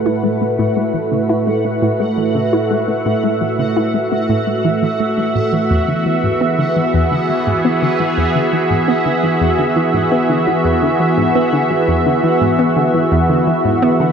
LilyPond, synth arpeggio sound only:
\new Staff \with { instrumentName = "Synth arpeggio sound" } { \clef bass \time 4/4 \key e \mixolydian \tempo 4 = 85 e'16 gis16 a16 a,16 gis16 e16 cis16 e'16 gis16 a16 a,16 gis16 e16 cis16 e'16 gis16 | a16 a,16 gis16 e16 cis16 e'16 gis16 a16 a,16 gis16 e16 e16 a16 gis16 a,16 e16 | e,16 d16 e16 gis,16 b16 d16 e16 e,16 d16 e16 gis,16 b16 d16 e16 e,16 d16 | e16 gis,16 b16 d16 e16 e,16 d16 e16 gis,16 b16 d16 e16 e,16 d16 e16 gis,16 |
b16 d16 e16 e,16 d16 e16 gis,16 b16 d16 e16 e,16 d16 e16 gis,16 b16 d16 | }